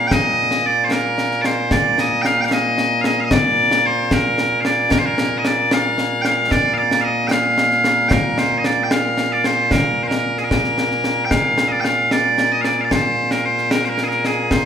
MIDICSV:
0, 0, Header, 1, 3, 480
1, 0, Start_track
1, 0, Key_signature, -2, "major"
1, 0, Tempo, 533333
1, 99, Time_signature, 6, 3, 24, 8
1, 13187, End_track
2, 0, Start_track
2, 0, Title_t, "Bagpipes"
2, 0, Program_c, 0, 109
2, 0, Note_on_c, 0, 46, 89
2, 0, Note_on_c, 0, 58, 89
2, 67, Note_on_c, 0, 79, 121
2, 107, Note_off_c, 0, 79, 0
2, 107, Note_on_c, 0, 75, 121
2, 590, Note_off_c, 0, 75, 0
2, 590, Note_on_c, 0, 74, 103
2, 759, Note_off_c, 0, 74, 0
2, 759, Note_on_c, 0, 72, 69
2, 827, Note_off_c, 0, 72, 0
2, 827, Note_on_c, 0, 70, 97
2, 1275, Note_off_c, 0, 70, 0
2, 1275, Note_on_c, 0, 74, 92
2, 1309, Note_off_c, 0, 74, 0
2, 1309, Note_on_c, 0, 72, 92
2, 1548, Note_off_c, 0, 72, 0
2, 1548, Note_on_c, 0, 74, 102
2, 1792, Note_off_c, 0, 74, 0
2, 1792, Note_on_c, 0, 75, 98
2, 1996, Note_off_c, 0, 75, 0
2, 1996, Note_on_c, 0, 79, 110
2, 2032, Note_off_c, 0, 79, 0
2, 2032, Note_on_c, 0, 77, 110
2, 2168, Note_off_c, 0, 77, 0
2, 2168, Note_on_c, 0, 79, 76
2, 2201, Note_off_c, 0, 79, 0
2, 2201, Note_on_c, 0, 77, 76
2, 2272, Note_off_c, 0, 77, 0
2, 2272, Note_on_c, 0, 75, 108
2, 2711, Note_off_c, 0, 75, 0
2, 2711, Note_on_c, 0, 77, 96
2, 2752, Note_off_c, 0, 77, 0
2, 2752, Note_on_c, 0, 75, 96
2, 2882, Note_off_c, 0, 75, 0
2, 2882, Note_on_c, 0, 77, 85
2, 2920, Note_off_c, 0, 77, 0
2, 2920, Note_on_c, 0, 75, 85
2, 2990, Note_off_c, 0, 75, 0
2, 2990, Note_on_c, 0, 74, 109
2, 3474, Note_off_c, 0, 74, 0
2, 3474, Note_on_c, 0, 72, 97
2, 3714, Note_off_c, 0, 72, 0
2, 3714, Note_on_c, 0, 70, 91
2, 4149, Note_off_c, 0, 70, 0
2, 4149, Note_on_c, 0, 77, 89
2, 4187, Note_off_c, 0, 77, 0
2, 4187, Note_on_c, 0, 74, 89
2, 4421, Note_off_c, 0, 74, 0
2, 4421, Note_on_c, 0, 70, 105
2, 4489, Note_off_c, 0, 70, 0
2, 4489, Note_on_c, 0, 72, 85
2, 4553, Note_off_c, 0, 72, 0
2, 4553, Note_on_c, 0, 70, 102
2, 4843, Note_off_c, 0, 70, 0
2, 4843, Note_on_c, 0, 75, 75
2, 4919, Note_off_c, 0, 75, 0
2, 4919, Note_on_c, 0, 74, 93
2, 5157, Note_off_c, 0, 74, 0
2, 5157, Note_on_c, 0, 77, 107
2, 5595, Note_off_c, 0, 77, 0
2, 5595, Note_on_c, 0, 79, 94
2, 5628, Note_off_c, 0, 79, 0
2, 5628, Note_on_c, 0, 77, 94
2, 5860, Note_off_c, 0, 77, 0
2, 5860, Note_on_c, 0, 74, 106
2, 6062, Note_off_c, 0, 74, 0
2, 6062, Note_on_c, 0, 77, 85
2, 6101, Note_off_c, 0, 77, 0
2, 6101, Note_on_c, 0, 74, 85
2, 6308, Note_off_c, 0, 74, 0
2, 6308, Note_on_c, 0, 77, 90
2, 6338, Note_off_c, 0, 77, 0
2, 6338, Note_on_c, 0, 75, 90
2, 6548, Note_off_c, 0, 75, 0
2, 6548, Note_on_c, 0, 79, 97
2, 6583, Note_off_c, 0, 79, 0
2, 6583, Note_on_c, 0, 77, 97
2, 7275, Note_off_c, 0, 77, 0
2, 7275, Note_on_c, 0, 79, 93
2, 7306, Note_off_c, 0, 79, 0
2, 7306, Note_on_c, 0, 70, 93
2, 7548, Note_off_c, 0, 70, 0
2, 7548, Note_on_c, 0, 72, 91
2, 7721, Note_off_c, 0, 72, 0
2, 7721, Note_on_c, 0, 75, 73
2, 7784, Note_off_c, 0, 75, 0
2, 7784, Note_on_c, 0, 74, 86
2, 7951, Note_off_c, 0, 74, 0
2, 7951, Note_on_c, 0, 79, 71
2, 8023, Note_off_c, 0, 79, 0
2, 8023, Note_on_c, 0, 77, 102
2, 8392, Note_off_c, 0, 77, 0
2, 8392, Note_on_c, 0, 74, 86
2, 8511, Note_off_c, 0, 74, 0
2, 8511, Note_on_c, 0, 72, 86
2, 8746, Note_off_c, 0, 72, 0
2, 8746, Note_on_c, 0, 70, 80
2, 9029, Note_off_c, 0, 70, 0
2, 9029, Note_on_c, 0, 72, 59
2, 9067, Note_off_c, 0, 72, 0
2, 9067, Note_on_c, 0, 70, 82
2, 9343, Note_off_c, 0, 70, 0
2, 9343, Note_on_c, 0, 68, 54
2, 9394, Note_off_c, 0, 68, 0
2, 9394, Note_on_c, 0, 70, 69
2, 10123, Note_off_c, 0, 70, 0
2, 10123, Note_on_c, 0, 79, 82
2, 10178, Note_off_c, 0, 79, 0
2, 10178, Note_on_c, 0, 77, 94
2, 10513, Note_off_c, 0, 77, 0
2, 10513, Note_on_c, 0, 75, 61
2, 10542, Note_off_c, 0, 75, 0
2, 10542, Note_on_c, 0, 74, 79
2, 10620, Note_off_c, 0, 74, 0
2, 10620, Note_on_c, 0, 79, 95
2, 10661, Note_off_c, 0, 79, 0
2, 10661, Note_on_c, 0, 77, 95
2, 10904, Note_off_c, 0, 77, 0
2, 10904, Note_on_c, 0, 74, 92
2, 11264, Note_off_c, 0, 74, 0
2, 11264, Note_on_c, 0, 75, 92
2, 11350, Note_off_c, 0, 75, 0
2, 11350, Note_on_c, 0, 77, 82
2, 11382, Note_off_c, 0, 77, 0
2, 11382, Note_on_c, 0, 74, 82
2, 11526, Note_off_c, 0, 74, 0
2, 11526, Note_on_c, 0, 77, 72
2, 11560, Note_off_c, 0, 77, 0
2, 11560, Note_on_c, 0, 74, 72
2, 11625, Note_off_c, 0, 74, 0
2, 11625, Note_on_c, 0, 72, 88
2, 11983, Note_off_c, 0, 72, 0
2, 11983, Note_on_c, 0, 70, 75
2, 12109, Note_off_c, 0, 70, 0
2, 12109, Note_on_c, 0, 72, 87
2, 12339, Note_off_c, 0, 72, 0
2, 12339, Note_on_c, 0, 70, 93
2, 12464, Note_off_c, 0, 70, 0
2, 12464, Note_on_c, 0, 72, 62
2, 12503, Note_off_c, 0, 72, 0
2, 12503, Note_on_c, 0, 70, 90
2, 12631, Note_off_c, 0, 70, 0
2, 12631, Note_on_c, 0, 68, 61
2, 12669, Note_off_c, 0, 68, 0
2, 12669, Note_on_c, 0, 70, 84
2, 12830, Note_off_c, 0, 70, 0
2, 12830, Note_on_c, 0, 68, 76
2, 13064, Note_off_c, 0, 68, 0
2, 13064, Note_on_c, 0, 72, 99
2, 13187, Note_off_c, 0, 46, 0
2, 13187, Note_off_c, 0, 58, 0
2, 13187, Note_off_c, 0, 72, 0
2, 13187, End_track
3, 0, Start_track
3, 0, Title_t, "Drums"
3, 102, Note_on_c, 9, 35, 60
3, 102, Note_on_c, 9, 38, 94
3, 192, Note_off_c, 9, 35, 0
3, 192, Note_off_c, 9, 38, 0
3, 461, Note_on_c, 9, 38, 72
3, 551, Note_off_c, 9, 38, 0
3, 819, Note_on_c, 9, 38, 93
3, 909, Note_off_c, 9, 38, 0
3, 1062, Note_on_c, 9, 38, 68
3, 1152, Note_off_c, 9, 38, 0
3, 1182, Note_on_c, 9, 38, 26
3, 1272, Note_off_c, 9, 38, 0
3, 1300, Note_on_c, 9, 38, 82
3, 1390, Note_off_c, 9, 38, 0
3, 1539, Note_on_c, 9, 35, 60
3, 1539, Note_on_c, 9, 38, 90
3, 1629, Note_off_c, 9, 35, 0
3, 1629, Note_off_c, 9, 38, 0
3, 1782, Note_on_c, 9, 38, 78
3, 1872, Note_off_c, 9, 38, 0
3, 2022, Note_on_c, 9, 38, 78
3, 2112, Note_off_c, 9, 38, 0
3, 2260, Note_on_c, 9, 38, 98
3, 2350, Note_off_c, 9, 38, 0
3, 2501, Note_on_c, 9, 38, 78
3, 2591, Note_off_c, 9, 38, 0
3, 2739, Note_on_c, 9, 38, 90
3, 2829, Note_off_c, 9, 38, 0
3, 2979, Note_on_c, 9, 35, 68
3, 2979, Note_on_c, 9, 38, 112
3, 3069, Note_off_c, 9, 35, 0
3, 3069, Note_off_c, 9, 38, 0
3, 3342, Note_on_c, 9, 38, 91
3, 3432, Note_off_c, 9, 38, 0
3, 3701, Note_on_c, 9, 35, 59
3, 3701, Note_on_c, 9, 38, 101
3, 3791, Note_off_c, 9, 35, 0
3, 3791, Note_off_c, 9, 38, 0
3, 3943, Note_on_c, 9, 38, 79
3, 4033, Note_off_c, 9, 38, 0
3, 4183, Note_on_c, 9, 38, 88
3, 4273, Note_off_c, 9, 38, 0
3, 4420, Note_on_c, 9, 35, 65
3, 4420, Note_on_c, 9, 38, 104
3, 4510, Note_off_c, 9, 35, 0
3, 4510, Note_off_c, 9, 38, 0
3, 4663, Note_on_c, 9, 38, 93
3, 4753, Note_off_c, 9, 38, 0
3, 4902, Note_on_c, 9, 38, 93
3, 4992, Note_off_c, 9, 38, 0
3, 5142, Note_on_c, 9, 38, 99
3, 5232, Note_off_c, 9, 38, 0
3, 5383, Note_on_c, 9, 38, 72
3, 5473, Note_off_c, 9, 38, 0
3, 5622, Note_on_c, 9, 38, 81
3, 5712, Note_off_c, 9, 38, 0
3, 5861, Note_on_c, 9, 35, 60
3, 5861, Note_on_c, 9, 38, 91
3, 5951, Note_off_c, 9, 35, 0
3, 5951, Note_off_c, 9, 38, 0
3, 6223, Note_on_c, 9, 38, 85
3, 6313, Note_off_c, 9, 38, 0
3, 6582, Note_on_c, 9, 38, 104
3, 6672, Note_off_c, 9, 38, 0
3, 6819, Note_on_c, 9, 38, 82
3, 6909, Note_off_c, 9, 38, 0
3, 6940, Note_on_c, 9, 38, 30
3, 7030, Note_off_c, 9, 38, 0
3, 7059, Note_on_c, 9, 38, 87
3, 7149, Note_off_c, 9, 38, 0
3, 7298, Note_on_c, 9, 35, 71
3, 7298, Note_on_c, 9, 38, 104
3, 7388, Note_off_c, 9, 35, 0
3, 7388, Note_off_c, 9, 38, 0
3, 7539, Note_on_c, 9, 38, 87
3, 7629, Note_off_c, 9, 38, 0
3, 7779, Note_on_c, 9, 38, 94
3, 7869, Note_off_c, 9, 38, 0
3, 8019, Note_on_c, 9, 38, 103
3, 8109, Note_off_c, 9, 38, 0
3, 8258, Note_on_c, 9, 38, 79
3, 8348, Note_off_c, 9, 38, 0
3, 8499, Note_on_c, 9, 38, 90
3, 8589, Note_off_c, 9, 38, 0
3, 8738, Note_on_c, 9, 35, 65
3, 8738, Note_on_c, 9, 38, 100
3, 8828, Note_off_c, 9, 35, 0
3, 8828, Note_off_c, 9, 38, 0
3, 9100, Note_on_c, 9, 38, 83
3, 9190, Note_off_c, 9, 38, 0
3, 9338, Note_on_c, 9, 38, 29
3, 9428, Note_off_c, 9, 38, 0
3, 9460, Note_on_c, 9, 35, 58
3, 9460, Note_on_c, 9, 38, 88
3, 9550, Note_off_c, 9, 35, 0
3, 9550, Note_off_c, 9, 38, 0
3, 9579, Note_on_c, 9, 38, 30
3, 9669, Note_off_c, 9, 38, 0
3, 9700, Note_on_c, 9, 38, 77
3, 9790, Note_off_c, 9, 38, 0
3, 9820, Note_on_c, 9, 38, 27
3, 9910, Note_off_c, 9, 38, 0
3, 9937, Note_on_c, 9, 38, 77
3, 10027, Note_off_c, 9, 38, 0
3, 10179, Note_on_c, 9, 35, 62
3, 10179, Note_on_c, 9, 38, 96
3, 10269, Note_off_c, 9, 35, 0
3, 10269, Note_off_c, 9, 38, 0
3, 10419, Note_on_c, 9, 38, 88
3, 10509, Note_off_c, 9, 38, 0
3, 10661, Note_on_c, 9, 38, 83
3, 10751, Note_off_c, 9, 38, 0
3, 10902, Note_on_c, 9, 38, 85
3, 10992, Note_off_c, 9, 38, 0
3, 11142, Note_on_c, 9, 38, 78
3, 11232, Note_off_c, 9, 38, 0
3, 11380, Note_on_c, 9, 38, 75
3, 11470, Note_off_c, 9, 38, 0
3, 11621, Note_on_c, 9, 35, 52
3, 11621, Note_on_c, 9, 38, 91
3, 11711, Note_off_c, 9, 35, 0
3, 11711, Note_off_c, 9, 38, 0
3, 11979, Note_on_c, 9, 38, 78
3, 12069, Note_off_c, 9, 38, 0
3, 12221, Note_on_c, 9, 38, 27
3, 12311, Note_off_c, 9, 38, 0
3, 12340, Note_on_c, 9, 38, 97
3, 12430, Note_off_c, 9, 38, 0
3, 12458, Note_on_c, 9, 38, 26
3, 12548, Note_off_c, 9, 38, 0
3, 12580, Note_on_c, 9, 38, 62
3, 12670, Note_off_c, 9, 38, 0
3, 12701, Note_on_c, 9, 38, 26
3, 12791, Note_off_c, 9, 38, 0
3, 12821, Note_on_c, 9, 38, 76
3, 12911, Note_off_c, 9, 38, 0
3, 13058, Note_on_c, 9, 35, 56
3, 13058, Note_on_c, 9, 38, 93
3, 13148, Note_off_c, 9, 35, 0
3, 13148, Note_off_c, 9, 38, 0
3, 13187, End_track
0, 0, End_of_file